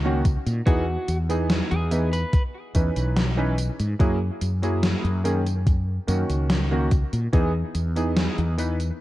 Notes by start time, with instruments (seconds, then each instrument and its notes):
Already playing: fretless electric bass C#2
0.04 electric grand piano D#3 A#3 C#4 F#4
0.25 kick, closed hi-hat, tambourine
0.46 fretless electric bass A#2, closed hi-hat, tambourine
0.66 fretless electric bass E2, electric grand piano E3 B3 D#4 G#4, lead electric guitar F#4, kick, closed hi-hat, tambourine
1.08 fretless electric bass E2, closed hi-hat, tambourine
1.29 electric grand piano E3 B3 D#4 G#4, closed hi-hat, tambourine
1.50 snare, closed hi-hat, tambourine
1.71 fretless electric bass E2, lead electric guitar G#4, closed hi-hat
1.91 electric grand piano E3 B3 D#4 B4, closed hi-hat, tambourine
2.13 lead electric guitar B4, closed hi-hat, tambourine
2.33 kick, closed hi-hat, tambourine
2.74 fretless electric bass E2, electric grand piano E3 C#4 D#4 B4, kick, closed hi-hat, tambourine
2.96 fretless electric bass B1, closed hi-hat, tambourine
3.17 snare, closed hi-hat, tambourine
3.37 electric grand piano E3 C#4 D#4 B4
3.58 closed hi-hat, tambourine
3.80 fretless electric bass G#2, closed hi-hat, tambourine
3.99 fretless electric bass F#2, electric grand piano F#3 A#3 E4 G#4, kick, closed hi-hat, tambourine
4.41 fretless electric bass F#2, closed hi-hat, tambourine
4.62 electric grand piano F#3 A#3 E4 G#4, closed hi-hat, tambourine
4.83 snare, closed hi-hat, tambourine
5.05 fretless electric bass F#2, closed hi-hat
5.24 electric grand piano D#3 A#3 C#4 G#4, closed hi-hat, tambourine
5.46 closed hi-hat, tambourine
5.67 kick, closed hi-hat, tambourine
6.07 fretless electric bass F#2, electric grand piano D#3 A#3 C#4 F#4, closed hi-hat, tambourine
6.30 fretless electric bass C#2, closed hi-hat, tambourine
6.50 snare, closed hi-hat, tambourine
6.71 electric grand piano D#3 A#3 C#4 F#4
6.91 kick, closed hi-hat, tambourine
7.13 fretless electric bass A#2, closed hi-hat, tambourine
7.33 fretless electric bass E2, electric grand piano E3 B3 D#4 G#4, kick, closed hi-hat, tambourine
7.75 fretless electric bass E2, closed hi-hat, tambourine
7.96 electric grand piano E3 B3 D#4 G#4, closed hi-hat, tambourine
8.17 snare, closed hi-hat, tambourine
8.38 fretless electric bass E2, closed hi-hat
8.57 electric grand piano E3 B3 D#4 B4, closed hi-hat, tambourine
8.80 closed hi-hat, tambourine